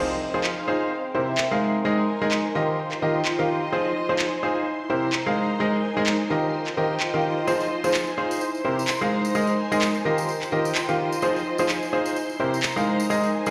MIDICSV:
0, 0, Header, 1, 5, 480
1, 0, Start_track
1, 0, Key_signature, -4, "minor"
1, 0, Tempo, 468750
1, 1894, Time_signature, 4, 2, 24, 8
1, 13827, End_track
2, 0, Start_track
2, 0, Title_t, "String machine"
2, 0, Program_c, 0, 50
2, 0, Note_on_c, 0, 72, 78
2, 0, Note_on_c, 0, 84, 79
2, 13827, Note_off_c, 0, 72, 0
2, 13827, Note_off_c, 0, 84, 0
2, 13827, End_track
3, 0, Start_track
3, 0, Title_t, "String section"
3, 0, Program_c, 1, 48
3, 0, Note_on_c, 1, 60, 79
3, 0, Note_on_c, 1, 63, 73
3, 0, Note_on_c, 1, 70, 81
3, 283, Note_on_c, 1, 68, 67
3, 371, Note_off_c, 1, 60, 0
3, 371, Note_off_c, 1, 70, 0
3, 414, Note_on_c, 1, 77, 79
3, 933, Note_off_c, 1, 63, 0
3, 934, Note_off_c, 1, 68, 0
3, 935, Note_off_c, 1, 77, 0
3, 937, Note_on_c, 1, 60, 76
3, 1271, Note_on_c, 1, 76, 74
3, 1272, Note_on_c, 1, 70, 78
3, 1655, Note_off_c, 1, 76, 0
3, 1658, Note_on_c, 1, 63, 71
3, 2052, Note_off_c, 1, 60, 0
3, 2096, Note_on_c, 1, 80, 61
3, 2616, Note_off_c, 1, 80, 0
3, 2617, Note_on_c, 1, 65, 71
3, 3049, Note_on_c, 1, 75, 81
3, 3096, Note_off_c, 1, 63, 0
3, 3096, Note_off_c, 1, 70, 0
3, 3162, Note_on_c, 1, 79, 65
3, 3814, Note_off_c, 1, 79, 0
3, 4253, Note_on_c, 1, 80, 68
3, 4774, Note_off_c, 1, 75, 0
3, 4774, Note_off_c, 1, 80, 0
3, 4775, Note_on_c, 1, 64, 67
3, 4776, Note_off_c, 1, 65, 0
3, 5110, Note_on_c, 1, 72, 66
3, 5110, Note_on_c, 1, 82, 68
3, 5495, Note_off_c, 1, 64, 0
3, 5495, Note_on_c, 1, 63, 74
3, 5633, Note_on_c, 1, 70, 74
3, 5891, Note_off_c, 1, 72, 0
3, 5891, Note_off_c, 1, 82, 0
3, 5930, Note_on_c, 1, 80, 61
3, 6453, Note_off_c, 1, 80, 0
3, 6454, Note_on_c, 1, 65, 71
3, 6570, Note_on_c, 1, 75, 81
3, 6935, Note_off_c, 1, 63, 0
3, 6935, Note_off_c, 1, 70, 0
3, 6984, Note_on_c, 1, 79, 78
3, 7653, Note_off_c, 1, 79, 0
3, 8093, Note_on_c, 1, 80, 80
3, 8614, Note_off_c, 1, 65, 0
3, 8614, Note_off_c, 1, 80, 0
3, 8615, Note_off_c, 1, 75, 0
3, 8616, Note_on_c, 1, 64, 72
3, 8819, Note_on_c, 1, 72, 80
3, 8951, Note_on_c, 1, 82, 64
3, 9333, Note_on_c, 1, 63, 72
3, 9335, Note_off_c, 1, 64, 0
3, 9551, Note_on_c, 1, 70, 66
3, 9731, Note_off_c, 1, 72, 0
3, 9732, Note_off_c, 1, 82, 0
3, 9772, Note_on_c, 1, 80, 72
3, 10294, Note_off_c, 1, 80, 0
3, 10294, Note_on_c, 1, 65, 72
3, 10641, Note_on_c, 1, 79, 70
3, 10774, Note_off_c, 1, 63, 0
3, 10774, Note_off_c, 1, 70, 0
3, 10842, Note_on_c, 1, 75, 77
3, 11494, Note_off_c, 1, 79, 0
3, 11930, Note_on_c, 1, 80, 74
3, 12453, Note_off_c, 1, 80, 0
3, 12453, Note_on_c, 1, 64, 78
3, 12454, Note_off_c, 1, 65, 0
3, 12454, Note_off_c, 1, 75, 0
3, 12687, Note_on_c, 1, 72, 75
3, 12783, Note_on_c, 1, 82, 68
3, 13172, Note_on_c, 1, 63, 69
3, 13174, Note_off_c, 1, 64, 0
3, 13418, Note_on_c, 1, 70, 75
3, 13568, Note_off_c, 1, 82, 0
3, 13569, Note_off_c, 1, 72, 0
3, 13612, Note_on_c, 1, 80, 77
3, 13827, Note_off_c, 1, 63, 0
3, 13827, Note_off_c, 1, 70, 0
3, 13827, Note_off_c, 1, 80, 0
3, 13827, End_track
4, 0, Start_track
4, 0, Title_t, "Grand piano"
4, 0, Program_c, 2, 0
4, 0, Note_on_c, 2, 53, 85
4, 0, Note_on_c, 2, 63, 79
4, 0, Note_on_c, 2, 65, 78
4, 0, Note_on_c, 2, 68, 77
4, 0, Note_on_c, 2, 72, 97
4, 133, Note_off_c, 2, 53, 0
4, 133, Note_off_c, 2, 63, 0
4, 133, Note_off_c, 2, 65, 0
4, 133, Note_off_c, 2, 68, 0
4, 133, Note_off_c, 2, 72, 0
4, 349, Note_on_c, 2, 53, 85
4, 349, Note_on_c, 2, 63, 77
4, 349, Note_on_c, 2, 65, 77
4, 349, Note_on_c, 2, 68, 77
4, 349, Note_on_c, 2, 72, 93
4, 484, Note_off_c, 2, 53, 0
4, 484, Note_off_c, 2, 65, 0
4, 484, Note_off_c, 2, 68, 0
4, 484, Note_off_c, 2, 72, 0
4, 485, Note_off_c, 2, 63, 0
4, 693, Note_on_c, 2, 68, 77
4, 694, Note_on_c, 2, 63, 85
4, 694, Note_on_c, 2, 65, 75
4, 694, Note_on_c, 2, 72, 89
4, 921, Note_off_c, 2, 63, 0
4, 921, Note_off_c, 2, 65, 0
4, 921, Note_off_c, 2, 68, 0
4, 921, Note_off_c, 2, 72, 0
4, 1173, Note_on_c, 2, 67, 71
4, 1174, Note_on_c, 2, 48, 80
4, 1174, Note_on_c, 2, 64, 72
4, 1174, Note_on_c, 2, 70, 71
4, 1174, Note_on_c, 2, 72, 88
4, 1333, Note_off_c, 2, 48, 0
4, 1333, Note_off_c, 2, 64, 0
4, 1333, Note_off_c, 2, 67, 0
4, 1333, Note_off_c, 2, 70, 0
4, 1333, Note_off_c, 2, 72, 0
4, 1550, Note_on_c, 2, 56, 80
4, 1550, Note_on_c, 2, 63, 71
4, 1550, Note_on_c, 2, 68, 72
4, 1550, Note_on_c, 2, 77, 91
4, 1551, Note_on_c, 2, 70, 74
4, 1785, Note_off_c, 2, 56, 0
4, 1785, Note_off_c, 2, 63, 0
4, 1785, Note_off_c, 2, 68, 0
4, 1785, Note_off_c, 2, 70, 0
4, 1785, Note_off_c, 2, 77, 0
4, 1894, Note_on_c, 2, 56, 88
4, 1894, Note_on_c, 2, 63, 80
4, 1894, Note_on_c, 2, 68, 80
4, 1894, Note_on_c, 2, 70, 79
4, 1894, Note_on_c, 2, 75, 95
4, 2053, Note_off_c, 2, 56, 0
4, 2053, Note_off_c, 2, 63, 0
4, 2053, Note_off_c, 2, 68, 0
4, 2053, Note_off_c, 2, 70, 0
4, 2053, Note_off_c, 2, 75, 0
4, 2269, Note_on_c, 2, 56, 82
4, 2269, Note_on_c, 2, 63, 77
4, 2269, Note_on_c, 2, 68, 75
4, 2269, Note_on_c, 2, 70, 78
4, 2269, Note_on_c, 2, 75, 93
4, 2404, Note_off_c, 2, 56, 0
4, 2404, Note_off_c, 2, 63, 0
4, 2404, Note_off_c, 2, 68, 0
4, 2404, Note_off_c, 2, 75, 0
4, 2405, Note_off_c, 2, 70, 0
4, 2614, Note_on_c, 2, 51, 82
4, 2614, Note_on_c, 2, 65, 76
4, 2614, Note_on_c, 2, 67, 76
4, 2614, Note_on_c, 2, 70, 77
4, 2614, Note_on_c, 2, 75, 93
4, 2850, Note_off_c, 2, 51, 0
4, 2850, Note_off_c, 2, 65, 0
4, 2850, Note_off_c, 2, 67, 0
4, 2850, Note_off_c, 2, 70, 0
4, 2850, Note_off_c, 2, 75, 0
4, 3095, Note_on_c, 2, 51, 78
4, 3095, Note_on_c, 2, 65, 74
4, 3095, Note_on_c, 2, 67, 72
4, 3095, Note_on_c, 2, 70, 71
4, 3095, Note_on_c, 2, 75, 86
4, 3254, Note_off_c, 2, 51, 0
4, 3254, Note_off_c, 2, 65, 0
4, 3254, Note_off_c, 2, 67, 0
4, 3254, Note_off_c, 2, 70, 0
4, 3254, Note_off_c, 2, 75, 0
4, 3470, Note_on_c, 2, 51, 81
4, 3470, Note_on_c, 2, 67, 73
4, 3470, Note_on_c, 2, 77, 90
4, 3471, Note_on_c, 2, 65, 72
4, 3471, Note_on_c, 2, 70, 77
4, 3705, Note_off_c, 2, 51, 0
4, 3705, Note_off_c, 2, 65, 0
4, 3705, Note_off_c, 2, 67, 0
4, 3705, Note_off_c, 2, 70, 0
4, 3705, Note_off_c, 2, 77, 0
4, 3815, Note_on_c, 2, 53, 86
4, 3815, Note_on_c, 2, 63, 81
4, 3815, Note_on_c, 2, 65, 78
4, 3815, Note_on_c, 2, 68, 80
4, 3815, Note_on_c, 2, 72, 97
4, 3974, Note_off_c, 2, 53, 0
4, 3974, Note_off_c, 2, 63, 0
4, 3974, Note_off_c, 2, 65, 0
4, 3974, Note_off_c, 2, 68, 0
4, 3974, Note_off_c, 2, 72, 0
4, 4190, Note_on_c, 2, 53, 84
4, 4190, Note_on_c, 2, 63, 78
4, 4190, Note_on_c, 2, 65, 76
4, 4190, Note_on_c, 2, 68, 79
4, 4190, Note_on_c, 2, 72, 95
4, 4325, Note_off_c, 2, 53, 0
4, 4325, Note_off_c, 2, 63, 0
4, 4325, Note_off_c, 2, 65, 0
4, 4325, Note_off_c, 2, 68, 0
4, 4325, Note_off_c, 2, 72, 0
4, 4536, Note_on_c, 2, 63, 85
4, 4536, Note_on_c, 2, 65, 78
4, 4536, Note_on_c, 2, 68, 77
4, 4536, Note_on_c, 2, 72, 92
4, 4762, Note_off_c, 2, 63, 0
4, 4763, Note_off_c, 2, 65, 0
4, 4763, Note_off_c, 2, 68, 0
4, 4763, Note_off_c, 2, 72, 0
4, 5015, Note_on_c, 2, 48, 81
4, 5015, Note_on_c, 2, 64, 73
4, 5015, Note_on_c, 2, 67, 73
4, 5015, Note_on_c, 2, 70, 72
4, 5015, Note_on_c, 2, 72, 87
4, 5174, Note_off_c, 2, 48, 0
4, 5174, Note_off_c, 2, 64, 0
4, 5174, Note_off_c, 2, 67, 0
4, 5174, Note_off_c, 2, 70, 0
4, 5174, Note_off_c, 2, 72, 0
4, 5391, Note_on_c, 2, 56, 83
4, 5391, Note_on_c, 2, 63, 76
4, 5391, Note_on_c, 2, 68, 73
4, 5391, Note_on_c, 2, 70, 75
4, 5391, Note_on_c, 2, 77, 91
4, 5625, Note_off_c, 2, 56, 0
4, 5625, Note_off_c, 2, 63, 0
4, 5625, Note_off_c, 2, 68, 0
4, 5625, Note_off_c, 2, 70, 0
4, 5625, Note_off_c, 2, 77, 0
4, 5735, Note_on_c, 2, 56, 88
4, 5735, Note_on_c, 2, 63, 80
4, 5735, Note_on_c, 2, 68, 81
4, 5735, Note_on_c, 2, 70, 81
4, 5735, Note_on_c, 2, 75, 95
4, 5894, Note_off_c, 2, 56, 0
4, 5894, Note_off_c, 2, 63, 0
4, 5894, Note_off_c, 2, 68, 0
4, 5894, Note_off_c, 2, 70, 0
4, 5894, Note_off_c, 2, 75, 0
4, 6111, Note_on_c, 2, 56, 85
4, 6111, Note_on_c, 2, 63, 80
4, 6111, Note_on_c, 2, 68, 81
4, 6111, Note_on_c, 2, 70, 79
4, 6111, Note_on_c, 2, 75, 91
4, 6245, Note_off_c, 2, 56, 0
4, 6245, Note_off_c, 2, 63, 0
4, 6245, Note_off_c, 2, 68, 0
4, 6245, Note_off_c, 2, 70, 0
4, 6245, Note_off_c, 2, 75, 0
4, 6454, Note_on_c, 2, 70, 78
4, 6455, Note_on_c, 2, 51, 85
4, 6455, Note_on_c, 2, 65, 77
4, 6455, Note_on_c, 2, 67, 77
4, 6455, Note_on_c, 2, 75, 92
4, 6690, Note_off_c, 2, 51, 0
4, 6690, Note_off_c, 2, 65, 0
4, 6690, Note_off_c, 2, 67, 0
4, 6690, Note_off_c, 2, 70, 0
4, 6690, Note_off_c, 2, 75, 0
4, 6935, Note_on_c, 2, 51, 81
4, 6935, Note_on_c, 2, 65, 71
4, 6935, Note_on_c, 2, 67, 72
4, 6935, Note_on_c, 2, 70, 73
4, 6935, Note_on_c, 2, 75, 87
4, 7094, Note_off_c, 2, 51, 0
4, 7094, Note_off_c, 2, 65, 0
4, 7094, Note_off_c, 2, 67, 0
4, 7094, Note_off_c, 2, 70, 0
4, 7094, Note_off_c, 2, 75, 0
4, 7310, Note_on_c, 2, 51, 83
4, 7310, Note_on_c, 2, 65, 72
4, 7310, Note_on_c, 2, 67, 76
4, 7310, Note_on_c, 2, 70, 73
4, 7310, Note_on_c, 2, 77, 90
4, 7545, Note_off_c, 2, 51, 0
4, 7545, Note_off_c, 2, 65, 0
4, 7545, Note_off_c, 2, 67, 0
4, 7545, Note_off_c, 2, 70, 0
4, 7545, Note_off_c, 2, 77, 0
4, 7653, Note_on_c, 2, 53, 88
4, 7653, Note_on_c, 2, 65, 80
4, 7654, Note_on_c, 2, 63, 81
4, 7654, Note_on_c, 2, 68, 80
4, 7654, Note_on_c, 2, 72, 99
4, 7813, Note_off_c, 2, 53, 0
4, 7813, Note_off_c, 2, 63, 0
4, 7813, Note_off_c, 2, 65, 0
4, 7813, Note_off_c, 2, 68, 0
4, 7813, Note_off_c, 2, 72, 0
4, 8029, Note_on_c, 2, 53, 88
4, 8029, Note_on_c, 2, 63, 81
4, 8029, Note_on_c, 2, 65, 80
4, 8029, Note_on_c, 2, 68, 78
4, 8029, Note_on_c, 2, 72, 92
4, 8164, Note_off_c, 2, 53, 0
4, 8164, Note_off_c, 2, 63, 0
4, 8164, Note_off_c, 2, 65, 0
4, 8164, Note_off_c, 2, 68, 0
4, 8164, Note_off_c, 2, 72, 0
4, 8374, Note_on_c, 2, 63, 84
4, 8374, Note_on_c, 2, 65, 76
4, 8374, Note_on_c, 2, 68, 79
4, 8374, Note_on_c, 2, 72, 93
4, 8602, Note_off_c, 2, 63, 0
4, 8602, Note_off_c, 2, 65, 0
4, 8602, Note_off_c, 2, 68, 0
4, 8602, Note_off_c, 2, 72, 0
4, 8854, Note_on_c, 2, 48, 80
4, 8854, Note_on_c, 2, 64, 73
4, 8854, Note_on_c, 2, 67, 73
4, 8854, Note_on_c, 2, 70, 75
4, 8854, Note_on_c, 2, 72, 89
4, 9013, Note_off_c, 2, 48, 0
4, 9013, Note_off_c, 2, 64, 0
4, 9013, Note_off_c, 2, 67, 0
4, 9013, Note_off_c, 2, 70, 0
4, 9013, Note_off_c, 2, 72, 0
4, 9230, Note_on_c, 2, 56, 83
4, 9230, Note_on_c, 2, 63, 74
4, 9230, Note_on_c, 2, 68, 75
4, 9230, Note_on_c, 2, 70, 75
4, 9230, Note_on_c, 2, 77, 90
4, 9465, Note_off_c, 2, 56, 0
4, 9465, Note_off_c, 2, 63, 0
4, 9465, Note_off_c, 2, 68, 0
4, 9465, Note_off_c, 2, 70, 0
4, 9465, Note_off_c, 2, 77, 0
4, 9574, Note_on_c, 2, 56, 87
4, 9574, Note_on_c, 2, 68, 79
4, 9574, Note_on_c, 2, 75, 97
4, 9575, Note_on_c, 2, 63, 78
4, 9575, Note_on_c, 2, 70, 82
4, 9733, Note_off_c, 2, 75, 0
4, 9734, Note_off_c, 2, 56, 0
4, 9734, Note_off_c, 2, 63, 0
4, 9734, Note_off_c, 2, 68, 0
4, 9734, Note_off_c, 2, 70, 0
4, 9950, Note_on_c, 2, 56, 88
4, 9950, Note_on_c, 2, 63, 80
4, 9950, Note_on_c, 2, 68, 81
4, 9950, Note_on_c, 2, 70, 81
4, 9950, Note_on_c, 2, 75, 96
4, 10085, Note_off_c, 2, 56, 0
4, 10085, Note_off_c, 2, 63, 0
4, 10085, Note_off_c, 2, 68, 0
4, 10085, Note_off_c, 2, 70, 0
4, 10085, Note_off_c, 2, 75, 0
4, 10294, Note_on_c, 2, 51, 86
4, 10294, Note_on_c, 2, 65, 77
4, 10294, Note_on_c, 2, 67, 80
4, 10294, Note_on_c, 2, 70, 80
4, 10294, Note_on_c, 2, 75, 94
4, 10530, Note_off_c, 2, 51, 0
4, 10530, Note_off_c, 2, 65, 0
4, 10530, Note_off_c, 2, 67, 0
4, 10530, Note_off_c, 2, 70, 0
4, 10530, Note_off_c, 2, 75, 0
4, 10774, Note_on_c, 2, 51, 78
4, 10774, Note_on_c, 2, 65, 73
4, 10774, Note_on_c, 2, 67, 76
4, 10774, Note_on_c, 2, 70, 73
4, 10774, Note_on_c, 2, 75, 87
4, 10933, Note_off_c, 2, 51, 0
4, 10933, Note_off_c, 2, 65, 0
4, 10933, Note_off_c, 2, 67, 0
4, 10933, Note_off_c, 2, 70, 0
4, 10933, Note_off_c, 2, 75, 0
4, 11150, Note_on_c, 2, 51, 80
4, 11150, Note_on_c, 2, 65, 74
4, 11150, Note_on_c, 2, 67, 75
4, 11150, Note_on_c, 2, 70, 75
4, 11150, Note_on_c, 2, 77, 93
4, 11384, Note_off_c, 2, 51, 0
4, 11384, Note_off_c, 2, 65, 0
4, 11384, Note_off_c, 2, 77, 0
4, 11385, Note_off_c, 2, 67, 0
4, 11385, Note_off_c, 2, 70, 0
4, 11494, Note_on_c, 2, 65, 82
4, 11494, Note_on_c, 2, 68, 80
4, 11494, Note_on_c, 2, 72, 98
4, 11495, Note_on_c, 2, 53, 89
4, 11495, Note_on_c, 2, 63, 84
4, 11653, Note_off_c, 2, 65, 0
4, 11653, Note_off_c, 2, 68, 0
4, 11653, Note_off_c, 2, 72, 0
4, 11654, Note_off_c, 2, 53, 0
4, 11654, Note_off_c, 2, 63, 0
4, 11870, Note_on_c, 2, 53, 86
4, 11870, Note_on_c, 2, 68, 79
4, 11871, Note_on_c, 2, 63, 79
4, 11871, Note_on_c, 2, 65, 80
4, 11871, Note_on_c, 2, 72, 93
4, 12005, Note_off_c, 2, 53, 0
4, 12005, Note_off_c, 2, 63, 0
4, 12005, Note_off_c, 2, 65, 0
4, 12005, Note_off_c, 2, 68, 0
4, 12005, Note_off_c, 2, 72, 0
4, 12214, Note_on_c, 2, 63, 83
4, 12215, Note_on_c, 2, 65, 77
4, 12215, Note_on_c, 2, 68, 80
4, 12215, Note_on_c, 2, 72, 97
4, 12442, Note_off_c, 2, 63, 0
4, 12442, Note_off_c, 2, 65, 0
4, 12442, Note_off_c, 2, 68, 0
4, 12442, Note_off_c, 2, 72, 0
4, 12694, Note_on_c, 2, 48, 78
4, 12694, Note_on_c, 2, 64, 74
4, 12694, Note_on_c, 2, 67, 72
4, 12694, Note_on_c, 2, 70, 75
4, 12694, Note_on_c, 2, 72, 89
4, 12853, Note_off_c, 2, 48, 0
4, 12853, Note_off_c, 2, 64, 0
4, 12853, Note_off_c, 2, 67, 0
4, 12853, Note_off_c, 2, 70, 0
4, 12853, Note_off_c, 2, 72, 0
4, 13070, Note_on_c, 2, 56, 83
4, 13070, Note_on_c, 2, 63, 77
4, 13070, Note_on_c, 2, 68, 75
4, 13070, Note_on_c, 2, 70, 77
4, 13070, Note_on_c, 2, 77, 90
4, 13305, Note_off_c, 2, 56, 0
4, 13305, Note_off_c, 2, 63, 0
4, 13305, Note_off_c, 2, 68, 0
4, 13305, Note_off_c, 2, 70, 0
4, 13305, Note_off_c, 2, 77, 0
4, 13415, Note_on_c, 2, 56, 87
4, 13415, Note_on_c, 2, 63, 80
4, 13415, Note_on_c, 2, 68, 83
4, 13415, Note_on_c, 2, 70, 83
4, 13415, Note_on_c, 2, 75, 101
4, 13574, Note_off_c, 2, 56, 0
4, 13574, Note_off_c, 2, 63, 0
4, 13574, Note_off_c, 2, 68, 0
4, 13574, Note_off_c, 2, 70, 0
4, 13574, Note_off_c, 2, 75, 0
4, 13790, Note_on_c, 2, 56, 88
4, 13790, Note_on_c, 2, 63, 80
4, 13790, Note_on_c, 2, 68, 82
4, 13790, Note_on_c, 2, 70, 80
4, 13790, Note_on_c, 2, 75, 92
4, 13827, Note_off_c, 2, 56, 0
4, 13827, Note_off_c, 2, 63, 0
4, 13827, Note_off_c, 2, 68, 0
4, 13827, Note_off_c, 2, 70, 0
4, 13827, Note_off_c, 2, 75, 0
4, 13827, End_track
5, 0, Start_track
5, 0, Title_t, "Drums"
5, 449, Note_on_c, 9, 39, 117
5, 552, Note_off_c, 9, 39, 0
5, 1409, Note_on_c, 9, 39, 113
5, 1511, Note_off_c, 9, 39, 0
5, 2369, Note_on_c, 9, 39, 117
5, 2472, Note_off_c, 9, 39, 0
5, 2985, Note_on_c, 9, 39, 37
5, 3087, Note_off_c, 9, 39, 0
5, 3330, Note_on_c, 9, 39, 112
5, 3432, Note_off_c, 9, 39, 0
5, 4289, Note_on_c, 9, 39, 115
5, 4392, Note_off_c, 9, 39, 0
5, 5249, Note_on_c, 9, 39, 116
5, 5352, Note_off_c, 9, 39, 0
5, 6209, Note_on_c, 9, 39, 112
5, 6312, Note_off_c, 9, 39, 0
5, 6826, Note_on_c, 9, 39, 35
5, 6928, Note_off_c, 9, 39, 0
5, 7170, Note_on_c, 9, 39, 109
5, 7272, Note_off_c, 9, 39, 0
5, 7655, Note_on_c, 9, 54, 58
5, 7758, Note_off_c, 9, 54, 0
5, 7786, Note_on_c, 9, 54, 39
5, 7889, Note_off_c, 9, 54, 0
5, 8029, Note_on_c, 9, 54, 71
5, 8130, Note_on_c, 9, 39, 110
5, 8131, Note_off_c, 9, 54, 0
5, 8136, Note_on_c, 9, 54, 64
5, 8232, Note_off_c, 9, 39, 0
5, 8238, Note_off_c, 9, 54, 0
5, 8265, Note_on_c, 9, 54, 38
5, 8367, Note_off_c, 9, 54, 0
5, 8510, Note_on_c, 9, 54, 77
5, 8612, Note_off_c, 9, 54, 0
5, 8612, Note_on_c, 9, 54, 57
5, 8715, Note_off_c, 9, 54, 0
5, 8752, Note_on_c, 9, 54, 36
5, 8854, Note_off_c, 9, 54, 0
5, 9001, Note_on_c, 9, 54, 70
5, 9090, Note_off_c, 9, 54, 0
5, 9090, Note_on_c, 9, 39, 105
5, 9090, Note_on_c, 9, 54, 60
5, 9192, Note_off_c, 9, 39, 0
5, 9192, Note_off_c, 9, 54, 0
5, 9232, Note_on_c, 9, 54, 37
5, 9335, Note_off_c, 9, 54, 0
5, 9469, Note_on_c, 9, 54, 74
5, 9572, Note_off_c, 9, 54, 0
5, 9573, Note_on_c, 9, 54, 65
5, 9676, Note_off_c, 9, 54, 0
5, 9698, Note_on_c, 9, 54, 38
5, 9801, Note_off_c, 9, 54, 0
5, 9953, Note_on_c, 9, 54, 72
5, 10050, Note_off_c, 9, 54, 0
5, 10050, Note_on_c, 9, 39, 111
5, 10050, Note_on_c, 9, 54, 61
5, 10152, Note_off_c, 9, 39, 0
5, 10153, Note_off_c, 9, 54, 0
5, 10185, Note_on_c, 9, 54, 34
5, 10287, Note_off_c, 9, 54, 0
5, 10425, Note_on_c, 9, 54, 74
5, 10527, Note_off_c, 9, 54, 0
5, 10532, Note_on_c, 9, 54, 60
5, 10634, Note_off_c, 9, 54, 0
5, 10665, Note_on_c, 9, 39, 34
5, 10676, Note_on_c, 9, 54, 35
5, 10768, Note_off_c, 9, 39, 0
5, 10779, Note_off_c, 9, 54, 0
5, 10909, Note_on_c, 9, 54, 75
5, 11009, Note_on_c, 9, 39, 103
5, 11011, Note_off_c, 9, 54, 0
5, 11017, Note_on_c, 9, 54, 61
5, 11111, Note_off_c, 9, 39, 0
5, 11120, Note_off_c, 9, 54, 0
5, 11147, Note_on_c, 9, 54, 36
5, 11250, Note_off_c, 9, 54, 0
5, 11391, Note_on_c, 9, 54, 76
5, 11490, Note_off_c, 9, 54, 0
5, 11490, Note_on_c, 9, 54, 62
5, 11592, Note_off_c, 9, 54, 0
5, 11636, Note_on_c, 9, 54, 32
5, 11738, Note_off_c, 9, 54, 0
5, 11861, Note_on_c, 9, 54, 75
5, 11963, Note_off_c, 9, 54, 0
5, 11969, Note_on_c, 9, 39, 110
5, 11973, Note_on_c, 9, 54, 61
5, 12071, Note_off_c, 9, 39, 0
5, 12075, Note_off_c, 9, 54, 0
5, 12110, Note_on_c, 9, 54, 38
5, 12212, Note_off_c, 9, 54, 0
5, 12345, Note_on_c, 9, 54, 65
5, 12448, Note_off_c, 9, 54, 0
5, 12456, Note_on_c, 9, 54, 57
5, 12558, Note_off_c, 9, 54, 0
5, 12589, Note_on_c, 9, 54, 40
5, 12692, Note_off_c, 9, 54, 0
5, 12839, Note_on_c, 9, 54, 67
5, 12929, Note_on_c, 9, 39, 111
5, 12934, Note_off_c, 9, 54, 0
5, 12934, Note_on_c, 9, 54, 55
5, 13032, Note_off_c, 9, 39, 0
5, 13036, Note_off_c, 9, 54, 0
5, 13080, Note_on_c, 9, 54, 36
5, 13182, Note_off_c, 9, 54, 0
5, 13308, Note_on_c, 9, 54, 73
5, 13411, Note_off_c, 9, 54, 0
5, 13419, Note_on_c, 9, 54, 63
5, 13521, Note_off_c, 9, 54, 0
5, 13553, Note_on_c, 9, 54, 37
5, 13655, Note_off_c, 9, 54, 0
5, 13786, Note_on_c, 9, 54, 70
5, 13827, Note_off_c, 9, 54, 0
5, 13827, End_track
0, 0, End_of_file